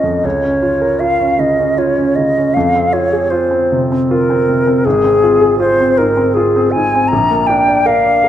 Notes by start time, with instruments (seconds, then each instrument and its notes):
Already playing: grand piano A#1 C#4 F4 A#4 C#5, flute D#5
0.03 grand piano F2
0.23 grand piano C#2, flute C#5
0.43 grand piano C#4
0.63 grand piano F4
0.82 grand piano A#4
0.99 grand piano F4, flute F5
1.20 grand piano C#4
1.39 grand piano C#3, flute D#5
1.59 grand piano C#4
1.78 grand piano F4, flute C#5
1.98 grand piano C#4
2.16 grand piano C#3, flute D#5
2.38 grand piano C#4
2.54 grand piano F2, flute F5
2.76 grand piano C4
2.93 grand piano F4, flute C#5
3.13 grand piano G#4
3.30 grand piano F4, flute C5
3.51 grand piano C4
3.72 grand piano C3
3.92 grand piano C4
4.11 grand piano F4, flute A#4
4.30 grand piano C4
4.49 grand piano C3
4.67 grand piano C4
4.85 grand piano G#1, flute G#4
5.04 grand piano C4
5.23 grand piano F4
5.41 grand piano G#4
5.59 grand piano F4, flute C5
5.80 grand piano C4
5.98 grand piano G#2, flute A#4
6.17 grand piano C4
6.34 grand piano F4, flute G#4
6.56 grand piano C4
6.71 flute G#5
6.76 grand piano G#2
6.95 grand piano C4
7.08 flute A#5
7.13 grand piano A#1
7.31 grand piano A#3
7.47 grand piano D4, flute G5
7.68 grand piano D5
7.86 grand piano A#4, flute F5
8.05 grand piano D5
8.24 grand piano A#4